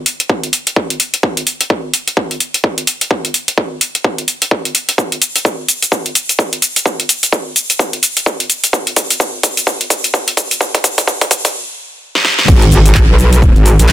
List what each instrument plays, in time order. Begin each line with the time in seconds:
0.06 open hi-hat
0.20 closed hi-hat
0.29 kick
0.43 closed hi-hat
0.53 open hi-hat
0.67 closed hi-hat
0.76 kick
0.90 closed hi-hat
1.00 open hi-hat
1.14 closed hi-hat
1.23 kick
1.37 closed hi-hat
1.47 open hi-hat
1.61 closed hi-hat
1.70 kick
1.94 open hi-hat
2.08 closed hi-hat
2.17 kick
2.31 closed hi-hat
2.40 open hi-hat
2.54 closed hi-hat
2.64 kick
2.78 closed hi-hat
2.87 open hi-hat
3.01 closed hi-hat
3.11 kick
3.25 closed hi-hat
3.34 open hi-hat
3.48 closed hi-hat
3.58 kick
3.81 open hi-hat
3.95 closed hi-hat
4.04 kick
4.18 closed hi-hat
4.28 open hi-hat
4.42 closed hi-hat
4.51 kick
4.65 closed hi-hat
4.75 open hi-hat
4.89 closed hi-hat
4.98 kick, shaker
5.12 closed hi-hat
5.22 open hi-hat, shaker
5.36 closed hi-hat, shaker
5.45 kick, shaker
5.68 open hi-hat, shaker
5.82 closed hi-hat, shaker
5.92 kick, shaker
6.06 closed hi-hat
6.15 open hi-hat, shaker
6.29 closed hi-hat, shaker
6.39 kick, shaker
6.53 closed hi-hat
6.62 open hi-hat, shaker
6.76 closed hi-hat, shaker
6.86 kick, shaker
7.00 closed hi-hat
7.09 open hi-hat, shaker
7.23 closed hi-hat, shaker
7.33 kick, shaker
7.56 open hi-hat, shaker
7.70 closed hi-hat, shaker
7.79 kick, shaker
7.93 closed hi-hat
8.03 open hi-hat, shaker
8.17 closed hi-hat, shaker
8.26 kick, shaker
8.40 closed hi-hat
8.50 open hi-hat, shaker
8.64 closed hi-hat, shaker
8.73 kick, shaker
8.87 closed hi-hat
8.96 kick, open hi-hat, shaker
9.10 closed hi-hat, shaker
9.20 kick, shaker
9.43 kick, open hi-hat, shaker
9.57 closed hi-hat, shaker
9.67 kick, shaker
9.81 closed hi-hat
9.90 kick, open hi-hat, shaker
10.04 closed hi-hat, shaker
10.14 kick, shaker
10.28 closed hi-hat
10.37 kick, open hi-hat, shaker
10.51 closed hi-hat, shaker
10.61 kick, shaker
10.75 kick, closed hi-hat
10.84 kick, open hi-hat, shaker
10.98 kick, closed hi-hat, shaker
11.07 kick, shaker
11.21 kick, open hi-hat
11.31 kick, open hi-hat, shaker
11.45 kick, closed hi-hat, shaker
12.15 snare
12.25 snare
12.39 snare
12.48 wobble bass G#1, kick, crash, shaker
12.62 closed hi-hat
12.72 wobble bass G#1, open hi-hat, shaker
12.86 closed hi-hat, shaker
12.95 kick, clap, shaker
13.09 wobble bass B1
13.19 open hi-hat, shaker
13.33 closed hi-hat, shaker
13.42 kick, shaker
13.56 wobble bass G#1, closed hi-hat
13.66 open hi-hat, shaker
13.79 wobble bass A#1, closed hi-hat, shaker
13.89 kick, clap